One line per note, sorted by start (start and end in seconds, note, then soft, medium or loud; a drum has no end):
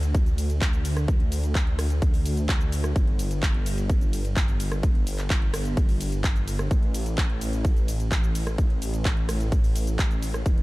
0.00 2.94 D2 medium
0.00 closed hi-hat medium
0.00 cabasa soft
0.15 kick loud
0.15 closed hi-hat medium
0.15 ride medium
0.15 cabasa soft
0.26 closed hi-hat soft
0.26 cabasa soft
0.38 open hi-hat loud
0.38 ride medium
0.38 cabasa medium
0.50 closed hi-hat medium
0.50 cabasa soft
0.61 kick loud
0.61 clap loud
0.61 closed hi-hat medium
0.61 ride medium
0.61 cabasa soft
0.73 closed hi-hat soft
0.73 cabasa soft
0.85 open hi-hat loud
0.85 ride medium
0.85 cabasa medium
0.97 cross-stick medium
0.97 closed hi-hat medium
0.97 cabasa soft
1.08 kick loud
1.08 closed hi-hat medium
1.08 ride medium
1.08 cabasa soft
1.20 closed hi-hat soft
1.32 open hi-hat loud
1.32 ride medium
1.32 cabasa medium
1.44 closed hi-hat medium
1.44 cabasa soft
1.55 kick loud
1.55 clap loud
1.55 closed hi-hat medium
1.55 ride medium
1.55 cabasa soft
1.67 closed hi-hat soft
1.79 cross-stick medium
1.79 open hi-hat loud
1.79 ride medium
1.79 cabasa medium
1.90 closed hi-hat medium
1.90 cabasa soft
2.02 kick loud
2.02 closed hi-hat medium
2.02 ride medium
2.02 cabasa soft
2.14 open hi-hat medium
2.14 cabasa soft
2.26 open hi-hat loud
2.26 ride medium
2.26 cabasa medium
2.37 closed hi-hat medium
2.37 cabasa soft
2.49 kick loud
2.49 clap loud
2.49 closed hi-hat medium
2.49 ride medium
2.49 cabasa soft
2.61 closed hi-hat soft
2.61 cabasa soft
2.72 open hi-hat loud
2.72 ride medium
2.72 cabasa medium
2.84 cross-stick medium
2.84 closed hi-hat medium
2.84 cabasa soft
2.96 6.69 G1 medium
2.96 kick loud
2.96 closed hi-hat medium
2.96 ride medium
2.96 cabasa soft
3.08 closed hi-hat soft
3.19 open hi-hat loud
3.19 ride medium
3.19 cabasa medium
3.31 closed hi-hat medium
3.31 cabasa soft
3.43 kick loud
3.43 clap loud
3.43 closed hi-hat medium
3.43 ride medium
3.43 cabasa soft
3.54 closed hi-hat soft
3.66 open hi-hat loud
3.66 ride medium
3.66 cabasa medium
3.78 closed hi-hat medium
3.78 cabasa soft
3.90 kick loud
3.90 closed hi-hat medium
3.90 ride medium
3.90 cabasa soft
4.01 closed hi-hat soft
4.01 cabasa soft
4.13 open hi-hat loud
4.13 ride medium
4.13 cabasa medium
4.25 closed hi-hat medium
4.25 cabasa soft
4.36 kick loud
4.36 clap loud
4.36 closed hi-hat medium
4.36 ride medium
4.36 cabasa soft
4.48 closed hi-hat soft
4.48 cabasa soft
4.60 open hi-hat loud
4.60 ride medium
4.60 cabasa medium
4.72 cross-stick medium
4.72 closed hi-hat medium
4.72 cabasa soft
4.83 kick loud
4.83 closed hi-hat soft
4.83 ride medium
4.83 cabasa soft
4.95 closed hi-hat soft
5.07 open hi-hat loud
5.07 ride medium
5.07 cabasa medium
5.19 clap soft
5.19 closed hi-hat medium
5.19 cabasa soft
5.30 kick loud
5.30 clap loud
5.30 closed hi-hat medium
5.30 ride medium
5.30 cabasa soft
5.42 closed hi-hat soft
5.54 cross-stick loud
5.54 open hi-hat loud
5.54 ride medium
5.54 cabasa medium
5.65 closed hi-hat soft
5.65 cabasa soft
5.77 kick loud
5.77 closed hi-hat medium
5.77 ride medium
5.77 cabasa soft
5.89 open hi-hat medium
5.89 cabasa soft
6.01 open hi-hat loud
6.01 ride medium
6.01 cabasa medium
6.12 closed hi-hat soft
6.12 cabasa soft
6.24 kick loud
6.24 clap loud
6.24 closed hi-hat medium
6.24 ride medium
6.24 cabasa soft
6.36 closed hi-hat soft
6.36 cabasa soft
6.48 open hi-hat loud
6.48 ride medium
6.48 cabasa medium
6.59 cross-stick medium
6.59 closed hi-hat soft
6.59 cabasa soft
6.71 10.44 A1 loud
6.71 kick loud
6.71 closed hi-hat medium
6.71 ride medium
6.71 cabasa soft
6.83 closed hi-hat soft
6.94 open hi-hat loud
6.94 ride medium
6.94 cabasa medium
7.06 closed hi-hat medium
7.06 cabasa soft
7.18 kick loud
7.18 clap loud
7.18 closed hi-hat medium
7.18 ride medium
7.18 cabasa soft
7.30 closed hi-hat soft
7.41 open hi-hat loud
7.41 ride medium
7.41 cabasa medium
7.53 closed hi-hat medium
7.53 cabasa soft
7.65 kick loud
7.65 closed hi-hat medium
7.65 ride medium
7.65 cabasa medium
7.77 closed hi-hat soft
7.77 cabasa soft
7.88 open hi-hat loud
7.88 ride medium
7.88 cabasa medium
8.00 closed hi-hat medium
8.00 cabasa soft
8.12 kick loud
8.12 clap loud
8.12 closed hi-hat medium
8.12 ride medium
8.12 cabasa soft
8.23 closed hi-hat soft
8.23 cabasa soft
8.35 open hi-hat loud
8.35 ride medium
8.35 cabasa medium
8.47 cross-stick medium
8.47 closed hi-hat medium
8.47 cabasa soft
8.58 kick loud
8.58 closed hi-hat medium
8.58 ride medium
8.58 cabasa soft
8.70 closed hi-hat soft
8.82 open hi-hat loud
8.82 ride medium
8.82 cabasa medium
8.94 closed hi-hat medium
8.94 cabasa soft
9.05 kick loud
9.05 clap loud
9.05 closed hi-hat medium
9.05 ride medium
9.05 cabasa medium
9.17 closed hi-hat soft
9.29 cross-stick medium
9.29 open hi-hat loud
9.29 ride medium
9.29 cabasa medium
9.41 closed hi-hat medium
9.41 cabasa soft
9.52 kick loud
9.52 closed hi-hat medium
9.52 ride medium
9.52 cabasa soft
9.64 open hi-hat medium
9.64 cabasa soft
9.76 open hi-hat loud
9.76 ride medium
9.76 cabasa medium
9.87 closed hi-hat medium
9.87 cabasa soft
9.99 kick loud
9.99 clap loud
9.99 closed hi-hat medium
9.99 ride medium
9.99 cabasa soft
10.11 closed hi-hat soft
10.11 cabasa soft
10.22 open hi-hat loud
10.22 ride medium
10.22 cabasa medium
10.34 cross-stick medium
10.34 closed hi-hat medium
10.34 cabasa soft
10.46 10.63 E1 medium
10.46 kick loud
10.46 closed hi-hat medium
10.46 ride medium
10.46 cabasa soft
10.58 closed hi-hat soft